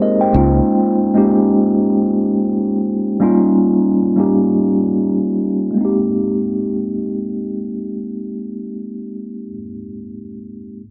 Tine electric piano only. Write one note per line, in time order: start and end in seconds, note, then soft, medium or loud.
0.00 0.33 G#3 medium
0.00 0.33 A#3 medium
0.00 0.35 C4 medium
0.00 0.35 D#4 medium
0.00 0.35 G4 loud
0.00 0.35 G#4 medium
0.00 0.20 A#4 medium
0.00 0.21 C5 medium
0.00 0.19 D#5 medium
0.21 0.51 C5 soft
0.21 0.51 G5 medium
0.33 0.97 G#3 medium
0.33 0.97 A#3 medium
0.33 0.98 C#4 medium
0.33 0.98 D#4 medium
0.33 0.98 F4 medium
1.15 2.15 G#3 medium
1.15 2.15 A#3 medium
1.15 2.16 C#4 medium
1.15 2.16 D#4 medium
1.15 2.16 G4 medium
3.20 3.98 G3 medium
3.20 3.98 A#3 medium
3.20 3.98 C#4 medium
3.20 3.99 D#4 medium
3.20 3.99 F4 loud
4.16 5.18 G3 medium
4.16 5.18 A#3 medium
4.16 5.18 C#4 medium
4.16 5.19 D#4 medium
4.16 5.19 G4 medium
5.71 9.45 G#3 medium
5.71 9.48 A#3 medium
5.78 9.52 C4 medium
5.78 9.55 D#4 medium
5.85 9.59 G4 medium